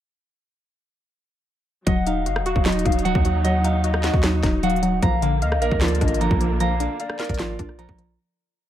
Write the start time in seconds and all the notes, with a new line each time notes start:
1.86 D#1 F#3 D#4 D#5 F#5, kick, closed hi-hat
2.07 D#4 F5, closed hi-hat
2.26 F#1 F#4 F5, closed hi-hat
2.36 cross-stick
2.41 D#1
2.46 F#4, closed hi-hat
2.56 D#1, kick
2.65 F#3 D#4 D#5, snare, clap, closed hi-hat
2.72 closed hi-hat
2.79 closed hi-hat
2.85 D#1 D#4 F5, kick, closed hi-hat
2.92 closed hi-hat
2.99 closed hi-hat
3.05 F#3 F#5, closed hi-hat
3.15 D#2, kick
3.25 F#3, closed hi-hat
3.44 F#3 D#5 F#5, closed hi-hat
3.64 D#4 F5, closed hi-hat
3.84 F#4 D#5, closed hi-hat
3.94 cross-stick
4.04 F#4, snare, clap, closed hi-hat
4.14 D#2, kick
4.23 F#3 D#4, snare, clap, closed hi-hat
4.43 D#1 D#4, kick, snare, closed hi-hat
4.63 F#3 F5 F#5, closed hi-hat
4.70 closed hi-hat
4.76 closed hi-hat
4.83 F#3 F#5, closed hi-hat
5.03 A#1 D3 F3 A#3 F5 A#5, kick, closed hi-hat
5.22 D3 F5, closed hi-hat
5.42 D2 D#5 F5, closed hi-hat
5.52 cross-stick
5.57 A#1
5.62 A#4 F5, closed hi-hat
5.71 D2, kick
5.81 F3 F4 D5, snare, clap, closed hi-hat
5.88 closed hi-hat
5.95 closed hi-hat
6.01 G#1 D4 D#5, kick, closed hi-hat
6.08 closed hi-hat
6.14 closed hi-hat
6.21 F3 A#5, closed hi-hat
6.31 A#1, kick
6.41 F3, closed hi-hat
6.60 F3 F5 A#5, closed hi-hat
6.80 D4 F5, closed hi-hat
7.00 D5 F5, closed hi-hat
7.10 cross-stick
7.19 A#4 F5, snare, clap, closed hi-hat
7.24 closed hi-hat
7.29 G#1, kick, closed hi-hat
7.34 closed hi-hat
7.39 F3 F4, snare, clap, closed hi-hat
7.59 A#1 D4, kick, closed hi-hat
7.69 cross-stick
7.79 F3 A#5, closed hi-hat
7.89 A#1, kick
7.98 F3, closed hi-hat